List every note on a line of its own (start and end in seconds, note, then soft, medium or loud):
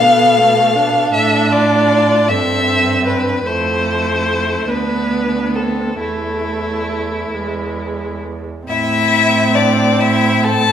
0.00 1.13 B2 medium
0.00 0.40 B3 medium
0.00 1.12 A4 medium
0.00 1.09 F5 loud
0.38 0.77 A3 medium
0.75 2.30 D4 medium
1.13 2.30 A2 medium
1.13 1.50 A4 medium
1.13 1.53 E5 loud
1.51 2.30 F4 medium
1.51 2.30 D5 medium
2.28 3.45 G2 medium
2.28 3.46 C4 medium
2.28 3.09 A4 medium
2.28 3.05 E5 loud
3.06 3.45 D4 medium
3.06 3.48 B4 medium
3.45 4.66 F2 medium
3.45 4.70 A3 medium
3.45 4.70 E4 medium
3.45 4.69 C5 medium
4.68 5.98 D2 medium
4.68 5.99 B3 medium
4.68 5.57 D4 medium
4.68 5.56 B4 medium
5.55 6.00 C4 medium
5.55 5.99 A4 medium
6.00 7.32 E2 medium
6.00 7.36 A3 medium
6.00 8.20 A3 medium
6.00 8.20 E4 medium
7.34 8.45 E2 soft
7.34 8.47 G#3 soft
8.67 10.72 A2 medium
8.67 10.72 C4 medium
8.67 9.56 E4 loud
8.67 9.56 E5 loud
9.54 10.01 D4 medium
9.54 10.02 D5 loud
10.00 10.46 E4 medium
10.00 10.45 E5 loud
10.44 10.72 A4 loud
10.44 10.72 A5 loud